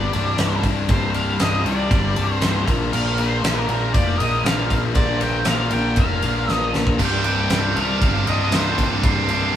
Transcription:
Already playing: G1 C3 G3 D4 D5
0.13 C1 C3 G3 D4, ride
0.38 C1 C2 G2 C3 G3 D4, snare, ride
0.63 C1, kick, ride
0.89 C1 C2 G2 C3 G3 D4 C5, kick, ride
1.14 C3 G3 D4 F5, ride
1.39 C1 G2 C3 G3 D4 D#5, snare, ride
1.65 C2 C3 G3 D4 D5, ride
1.91 G1, kick, ride
2.16 C1 C3 G3 D4, ride
2.35 C5
2.41 C1 C2 G2 C3 G3 D4, snare, ride
2.66 A#1 A#2 F3 A#3 D4 F4 A#4, kick, ride
2.92 A#1 A#2 F3 A#3 D4 F4 A#4 F5, crash
3.18 A#3 D4 F4 A#4 C5, ride
3.41 A#1 A#3 D4 F4 A#4, snare, ride
3.67 A#1 A#3 D4 F4 A#4, ride
3.93 F1 D5, kick, ride
4.17 A#1 A#3 D4 F4 A#4 D#5, ride
4.44 A#1 A#2 F3 A#3 D4 F4 A#4 F5, snare, ride
4.70 A#1, kick, ride
4.94 A#1 A#2 F3 A#3 D4 F4 A#4 D5, kick, ride
5.20 A#3 D4 F4 A#4 G5, ride
5.45 A#1 A#3 D4 F4 A#4 F5, snare, ride
5.71 A#1 A#3 D4 F4 A#4 G5, ride
5.96 F1 F5, kick, ride
6.22 A#1 A#3 D4 F4 A#4, ride
6.48 A#1 A#2 F3 A#3 D4 F4 A#4 D#5, snare
6.74 A#1, snare
6.87 kick
6.99 C1 C2 G2 C3 G3 D4, kick, crash
7.05 G5
7.24 C3 G3 D4, ride
7.40 G5
7.50 C1 G2 C3 G3 D4, snare, ride
7.75 C2 C3 G3 D4 F5, ride
8.01 G1, kick, ride
8.27 C1 C3 G3 D4 D#5, ride
8.52 C1 C2 G2 C3 G3 D4 C5, snare, ride
8.78 C1 C3 G3 D4, kick, ride
9.03 C1 C2 G2 C3 G3 D4 C6, kick, ride
9.29 C3 G3 D4, ride
9.42 C6

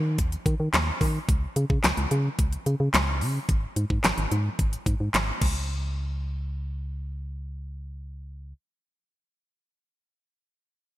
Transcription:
Already playing: D#3
0.18 D#2, kick, closed hi-hat
0.32 closed hi-hat
0.46 D#3, kick, closed hi-hat
0.60 D#3
0.74 D#2, snare, clap, closed hi-hat
1.01 D#3, kick, open hi-hat
1.29 C#2, kick, closed hi-hat
1.56 C#3, closed hi-hat
1.70 C#3, kick
1.84 C#2, snare, clap, closed hi-hat
1.97 C#2, closed hi-hat
2.11 C#3, closed hi-hat
2.39 C#2, kick, closed hi-hat
2.53 closed hi-hat
2.66 C#3, closed hi-hat
2.80 C#3
2.94 C#2, snare, clap, closed hi-hat
3.21 C#3, open hi-hat
3.49 G#1, kick, closed hi-hat
3.76 G#2, closed hi-hat
3.90 G#2, kick
4.04 G#1, snare, clap, closed hi-hat
4.18 G#1, closed hi-hat
4.31 G#2, closed hi-hat
4.59 G#1, kick, closed hi-hat
4.73 closed hi-hat
4.86 G#2, kick, closed hi-hat
5.00 G#2
5.14 G#1, snare, clap, closed hi-hat
5.41 C#2, kick, crash

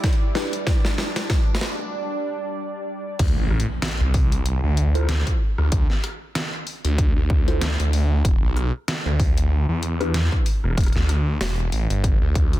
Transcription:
Already playing: G3 E4 D5
0.04 kick, snare, closed hi-hat
0.13 closed hi-hat
0.35 D4 E4 G4 B4, snare
0.53 closed hi-hat
0.67 D4, kick, snare, closed hi-hat
0.85 snare
0.98 snare
1.16 snare, closed hi-hat
1.30 kick, snare, closed hi-hat
1.55 snare
1.61 snare
3.19 D2, kick, closed hi-hat, crash, impact
3.28 closed hi-hat
3.37 A1
3.51 cross-stick
3.60 closed hi-hat
3.82 snare, closed hi-hat
3.85 closed hi-hat
3.88 closed hi-hat
3.91 closed hi-hat
3.93 closed hi-hat
3.97 C2, closed hi-hat
4.14 kick, open hi-hat
4.32 closed hi-hat
4.46 closed hi-hat
4.64 D2
4.77 closed hi-hat
4.95 E4 F4 A4 C5, cross-stick, closed hi-hat
4.97 cross-stick
4.99 cross-stick
5.01 cross-stick
5.03 cross-stick
5.05 cross-stick
5.07 cross-stick, snare, closed hi-hat
5.27 kick, closed hi-hat
5.58 D2, cross-stick
5.72 D2, kick, closed hi-hat
5.90 snare
6.04 cross-stick, closed hi-hat
6.35 snare, closed hi-hat
6.67 open hi-hat
6.85 D2, closed hi-hat
6.98 kick, closed hi-hat
7.16 D2
7.30 kick
7.48 E4 F4 A4 C5, closed hi-hat
7.61 snare, closed hi-hat
7.80 D2, closed hi-hat
7.93 open hi-hat
8.25 E1, kick, closed hi-hat
8.43 B1
8.57 cross-stick, closed hi-hat
8.88 snare, closed hi-hat
9.06 D2
9.20 kick, open hi-hat
9.38 closed hi-hat
9.69 E2
9.83 closed hi-hat
10.01 D4 E4 G4 B4, cross-stick, closed hi-hat
10.14 snare, closed hi-hat
10.32 kick
10.46 open hi-hat
10.64 E1, cross-stick
10.71 cross-stick
10.77 E1, kick, cross-stick, closed hi-hat
10.81 closed hi-hat
10.84 cross-stick, closed hi-hat
10.86 closed hi-hat
10.88 closed hi-hat
10.93 D2, snare, closed hi-hat
11.09 cross-stick, closed hi-hat
11.41 E1, snare, closed hi-hat
11.72 A1, open hi-hat
11.90 G1, closed hi-hat
12.04 kick, closed hi-hat
12.22 D2
12.35 kick, closed hi-hat
12.53 closed hi-hat

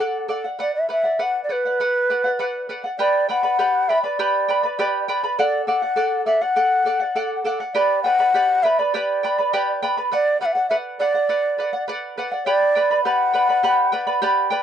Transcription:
Already playing: F#5
0.00 A4 D5 F#5
0.28 A4 D5 F#5
0.44 D5 F#5
0.59 B4 D5 F#5
0.75 E5
0.89 B4 D5 E5 F#5
1.03 D5 F#5
1.19 B4 D5 F#5
1.44 D5
1.49 B4 D5 F#5
1.65 D5 F#5
1.80 B4 D5 F#5
2.10 B4 D5 F#5
2.24 D5 F#5
2.39 B4 D5 F#5
2.69 B4 D5 F#5
2.84 D5 F#5
2.99 G4 B4 D5 G5 B5
3.29 B4 D5 F#5 G5 B5
3.43 B4 D5 B5
3.59 G4 B4 D5 B5
3.89 B4 D5 E5 G5 B5
4.03 B4 D5 B5
4.19 G4 B4 D5 G5 B5
4.48 B4 D5 G5 B5
4.63 B4 D5 B5
4.79 G4 B4 D5 G5 B5
5.08 B4 D5 G5 B5
5.24 B4 D5 B5
5.38 A4 D5 F#5
5.65 A4 D5 F#5
5.82 D5 F#5
5.96 A4 D5 F#5
6.26 A4 D5 E5 F#5
6.41 D5 F#5
6.56 A4 D5 F#5
6.85 A4 D5 F#5
7.00 D5 F#5
7.15 A4 D5 F#5
7.44 A4 D5 F#5
7.60 D5 F#5
7.74 G4 B4 D5 G5 B5
8.03 B4 D5 F#5 G5 B5
8.19 B4 D5 B5
8.34 G4 B4 D5 B5
8.63 B4 D5 E5 G5 B5
8.79 B4 D5 B5
8.94 G4 B4 D5 G5 B5
9.23 B4 D5 G5 B5
9.38 B4 D5 B5
9.53 G4 B4 D5 G5 B5
9.82 B4 D5 G5 B5
9.97 B4 D5 B5
10.12 B4 D5 F#5
10.41 B4 D5 F#5
10.45 E5
10.52 D5 F#5
10.69 B4 D5 E5 F#5
10.99 B4 D5 F#5
11.14 D5 F#5
11.29 B4 D5 F#5
11.58 B4 D5 F#5
11.73 D5 F#5
11.88 B4 D5 F#5
12.17 B4 D5 F#5
12.32 D5 F#5
12.45 G4 B4 D5 G5 B5
12.75 B4 D5 G5 B5
12.91 B4 D5 B5
13.04 G4 B4 D5 F#5 B5
13.34 B4 D5 G5 B5
13.49 B4 D5 B5
13.63 G4 B4 D5 B5
13.92 B4 D5 G5 B5
14.07 B4 D5 B5
14.22 G4 B4 D5 B5
14.50 B4 D5 G5 B5

